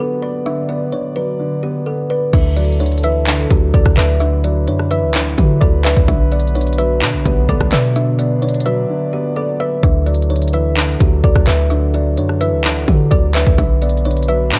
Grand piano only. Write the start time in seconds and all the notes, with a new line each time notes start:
Already playing: D3 F#3
0.00 B3
0.22 D5
0.46 D3
0.69 B3
0.92 D3
1.16 F#3
1.39 D3
1.63 B3
1.86 B3
2.10 D5
2.34 D3
2.57 F#3
2.80 D3
3.04 E3
3.27 D3
3.51 F#3
3.74 F#3
3.97 D4
4.21 D3
4.44 F#3
4.68 D3
4.91 E3
5.14 D3
5.38 F#3
5.61 F#3
5.85 D4
6.09 D3
6.31 B3
6.55 D3
6.79 F#3
7.02 D3
7.25 B3
7.49 B3
7.72 D5
7.95 D3
8.19 B3
8.42 D3
8.66 F#3
8.89 D3
9.13 B3
9.36 B3
9.60 D5
9.83 D3
10.06 F#3
10.30 D3
10.53 E3
10.77 D3
11.01 F#3
11.24 F#3
11.47 D4
11.71 D3
11.94 F#3
12.18 D3
12.41 E3
12.64 D3
12.88 F#3
13.11 F#3
13.35 D4
13.59 D3
13.81 B3
14.05 D3
14.29 F#3
14.52 D3